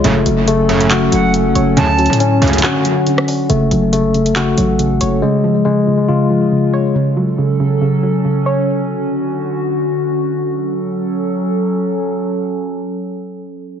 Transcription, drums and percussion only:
0.04 closed hi-hat
0.26 closed hi-hat
0.48 closed hi-hat
0.69 closed hi-hat
0.81 closed hi-hat
0.91 clap, closed hi-hat
1.12 closed hi-hat
1.34 closed hi-hat
1.55 closed hi-hat
1.77 closed hi-hat
1.99 closed hi-hat
2.06 closed hi-hat
2.13 closed hi-hat
2.20 closed hi-hat
2.42 closed hi-hat, open hi-hat
2.48 closed hi-hat
2.53 closed hi-hat
2.58 closed hi-hat
2.63 clap
2.85 closed hi-hat
3.07 closed hi-hat
3.18 cross-stick
3.28 open hi-hat
3.50 closed hi-hat
3.71 closed hi-hat
3.93 closed hi-hat
4.14 closed hi-hat
4.26 closed hi-hat
4.36 clap, closed hi-hat
4.58 closed hi-hat
4.79 closed hi-hat
5.01 closed hi-hat

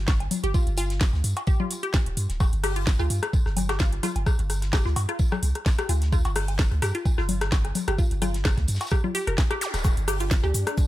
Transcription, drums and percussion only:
0.07 kick, snare, tambourine, cowbell
0.20 closed hi-hat, low woodblock
0.31 open hi-hat, tambourine, low conga
0.44 closed hi-hat
0.54 kick, tambourine
0.67 closed hi-hat
0.77 open hi-hat, tambourine, low woodblock
0.90 snare, closed hi-hat
1.01 kick, snare, tambourine
1.14 snare
1.24 open hi-hat, tambourine
1.37 closed hi-hat, cowbell, low woodblock
1.47 kick, tambourine
1.60 low conga
1.71 open hi-hat, tambourine
1.83 closed hi-hat
1.93 kick, snare, tambourine, low woodblock
2.06 closed hi-hat
2.17 open hi-hat, tambourine
2.29 snare, closed hi-hat
2.40 kick, cross-stick, tambourine, cowbell, low woodblock
2.53 closed hi-hat
2.64 cross-stick, open hi-hat
2.76 closed hi-hat
2.87 kick, snare, tambourine
2.99 cross-stick, closed hi-hat, low woodblock
3.10 open hi-hat, tambourine
3.23 cross-stick, closed hi-hat
3.33 kick, tambourine
3.46 cross-stick, snare
3.57 open hi-hat, tambourine, low conga, low woodblock
3.69 cross-stick, snare, closed hi-hat, cowbell
3.79 kick, snare, tambourine
3.92 closed hi-hat
4.03 cross-stick, open hi-hat, tambourine, low conga
4.16 closed hi-hat, low woodblock
4.26 kick, cross-stick, tambourine
4.39 closed hi-hat
4.50 cross-stick, open hi-hat, tambourine
4.61 snare, closed hi-hat
4.73 kick, cross-stick, snare, tambourine, low woodblock
4.85 snare
4.96 open hi-hat, tambourine, cowbell
5.09 cross-stick, closed hi-hat
5.19 kick, tambourine
5.32 cross-stick, low conga, low woodblock
5.42 open hi-hat, tambourine
5.55 cross-stick, closed hi-hat
5.66 kick, snare, tambourine
5.78 cross-stick, closed hi-hat
5.89 open hi-hat, tambourine, low woodblock
6.02 snare, closed hi-hat
6.12 kick, cross-stick, tambourine
6.25 closed hi-hat, cowbell
6.36 cross-stick, open hi-hat
6.48 closed hi-hat, low woodblock
6.59 kick, cross-stick, snare, tambourine
6.72 closed hi-hat
6.82 cross-stick, open hi-hat, tambourine
6.95 closed hi-hat
7.05 kick, tambourine, low woodblock
7.18 cross-stick, snare
7.29 open hi-hat, tambourine, low conga
7.41 cross-stick, snare, closed hi-hat
7.52 kick, snare, tambourine, cowbell
7.65 cross-stick, closed hi-hat, low woodblock
7.75 open hi-hat, tambourine, low conga
7.88 cross-stick, closed hi-hat
7.98 kick, tambourine
8.11 closed hi-hat
8.22 cross-stick, open hi-hat, tambourine, low conga, low woodblock
8.34 snare, closed hi-hat
8.45 kick, cross-stick, snare, tambourine
8.57 kick, snare, closed hi-hat
8.68 open hi-hat, tambourine
8.74 snare, tambourine
8.81 snare, closed hi-hat, tambourine, cowbell, low woodblock
8.86 snare, tambourine
8.91 kick, cross-stick, tambourine
9.04 low conga
9.15 open hi-hat, tambourine
9.27 cross-stick, closed hi-hat
9.38 kick, snare, tambourine, low woodblock
9.51 cross-stick, closed hi-hat
9.61 snare, open hi-hat, tambourine
9.74 cross-stick, snare, closed hi-hat, tambourine
9.84 kick, cross-stick, tambourine, cowbell, cabasa, low woodblock
9.97 closed hi-hat, cabasa
10.08 cross-stick, open hi-hat, cabasa
10.20 closed hi-hat, cabasa
10.31 kick, snare, tambourine, cabasa
10.44 cross-stick, closed hi-hat, low woodblock
10.54 open hi-hat, tambourine, cabasa
10.67 cross-stick, closed hi-hat, cabasa
10.77 kick, tambourine, cabasa

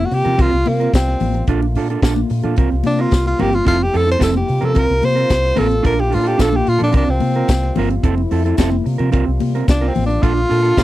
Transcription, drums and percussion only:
0.11 open hi-hat
0.25 closed hi-hat, low conga
0.38 kick, closed hi-hat
0.53 muted conga
0.66 open hi-hat, high conga
0.81 closed hi-hat
0.94 kick, snare, closed hi-hat, tambourine, muted conga
1.08 snare
1.20 open hi-hat, high conga, low conga
1.34 closed hi-hat
1.47 kick, closed hi-hat, muted conga
1.62 muted conga
1.75 open hi-hat
1.90 closed hi-hat
2.02 kick, snare, closed hi-hat, tambourine, muted conga
2.16 muted conga, high conga
2.30 open hi-hat
2.43 closed hi-hat, low conga
2.56 kick, closed hi-hat
2.84 open hi-hat, high conga
2.99 closed hi-hat
3.11 kick, snare, closed hi-hat, tambourine, muted conga
3.26 muted conga
3.38 open hi-hat, high conga, low conga
3.53 closed hi-hat
3.66 kick, closed hi-hat
3.81 muted conga
3.94 open hi-hat
4.09 closed hi-hat
4.21 kick, snare, closed hi-hat, tambourine, muted conga
4.34 muted conga, high conga
4.48 open hi-hat
4.62 closed hi-hat, low conga
4.75 kick, closed hi-hat
4.90 muted conga
5.02 open hi-hat, high conga
5.17 closed hi-hat
5.29 kick, snare, closed hi-hat, tambourine, muted conga
5.44 snare
5.56 open hi-hat, high conga, low conga
5.71 closed hi-hat
5.84 kick, closed hi-hat, muted conga
5.99 muted conga
6.12 open hi-hat
6.26 closed hi-hat
6.39 kick, snare, closed hi-hat, tambourine, muted conga
6.53 high conga
6.67 open hi-hat
6.80 closed hi-hat, low conga
6.92 kick, closed hi-hat
7.20 open hi-hat, high conga
7.35 closed hi-hat
7.48 kick, snare, closed hi-hat, tambourine
7.63 snare, muted conga
7.75 open hi-hat, high conga, low conga
7.91 closed hi-hat
8.04 kick, closed hi-hat
8.18 muted conga
8.31 open hi-hat
8.46 closed hi-hat
8.57 kick, snare, closed hi-hat, tambourine, muted conga
8.72 muted conga, high conga
8.86 open hi-hat
8.99 closed hi-hat, low conga
9.12 kick, closed hi-hat, muted conga
9.40 open hi-hat, high conga
9.55 closed hi-hat
9.68 kick, snare, closed hi-hat, tambourine
9.82 snare, muted conga
9.95 open hi-hat, high conga, low conga
10.10 closed hi-hat
10.23 kick, closed hi-hat
10.37 muted conga
10.51 open hi-hat
10.65 closed hi-hat
10.77 kick, snare, closed hi-hat, tambourine, muted conga

